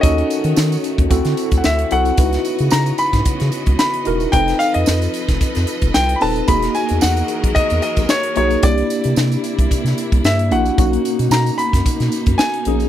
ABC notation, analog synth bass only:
X:1
M:4/4
L:1/16
Q:"Swing 16ths" 1/4=112
K:B
V:1 name="Analog synth bass" clef=bass
D,,2 z D, D,2 z D,, =D,, =D, z D,, D,,2 =C,,2 | C,,2 z C, C,2 z G,, C, C, z C,, z2 E,,,2 | =F,,,2 z =F,, F,,2 z F,,, F,, F,, z F,,, =C,,2 _E,,,2 | E,,,2 z E,, E,,2 z B,,, E,, E,, z B,,, z2 B,,,2 |
=C,,2 z =C, C,2 z C,, C, C, z C,, =G,,2 _B,,,2 | B,,,2 z B,, B,,2 z F,, B,, B,, z F,, z2 A,,,2 |]